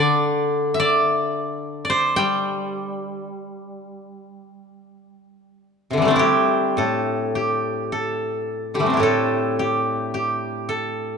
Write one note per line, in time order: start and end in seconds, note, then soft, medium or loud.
0.00 3.28 D3 medium
0.00 1.40 A4 medium
0.00 0.79 D5 loud
0.74 2.46 E5 medium
0.80 1.84 D5 loud
1.85 3.69 D5 medium
1.90 3.88 C5 medium
2.16 5.61 G3 medium
2.16 3.84 G5 loud
3.84 4.13 F#5 loud
4.13 4.42 F5 loud
4.42 5.56 E5 loud
5.91 6.16 C3 soft
5.91 6.14 D3 soft
5.97 6.16 E3 soft
6.02 6.83 G3 medium
6.02 8.80 A3 soft
6.08 8.86 C4 medium
6.08 8.89 D4 medium
6.16 8.76 E4 medium
6.16 7.35 G4 medium
6.77 8.98 A2 soft
6.77 7.92 A4 medium
7.35 8.74 G4 medium
7.92 9.02 A4 medium
8.74 8.92 D3 soft
8.74 8.96 G4 medium
8.79 8.96 E3 soft
8.79 9.06 G3 soft
8.79 11.18 A3 soft
8.86 11.18 C4 soft
8.86 11.18 D4 soft
8.93 11.18 E4 soft
8.93 9.59 G4 medium
9.00 11.18 A2 soft
9.00 10.68 A4 medium
9.59 10.14 G4 medium
10.14 11.18 G4 medium
10.69 11.18 A4 medium